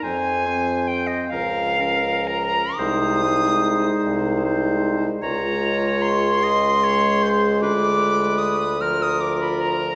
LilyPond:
<<
  \new Staff \with { instrumentName = "Flute" } { \time 6/8 \key bes \dorian \tempo 4. = 50 aes''4 g''16 ees''16 f''4 bes''8 | ees'''2 r4 | bes''4 c'''2 | d'''4 ees'''8 f'''16 ees'''16 d'''16 b''16 bes''8 | }
  \new Staff \with { instrumentName = "Oboe" } { \time 6/8 \key bes \dorian c''8 c''4 bes'8 bes'4 | c''8 c''4. c''4 | des''4. ees''8 des''8 c''8 | b'4. bes'4. | }
  \new Staff \with { instrumentName = "Clarinet" } { \time 6/8 \key bes \dorian c'8 c'4 des'8 des'4 | ees'8 ees'4. ees'4 | f'4. aes'4. | f'4. f'4. | }
  \new Staff \with { instrumentName = "French horn" } { \clef bass \time 6/8 \key bes \dorian f8 f4 f8 f4 | aes8 aes4. aes4 | aes2.~ | aes4. f4. | }
  \new Staff \with { instrumentName = "Bassoon" } { \clef bass \time 6/8 \key bes \dorian f,4. des,4. | c,4. c,4. | des,2. | d,2. | }
>>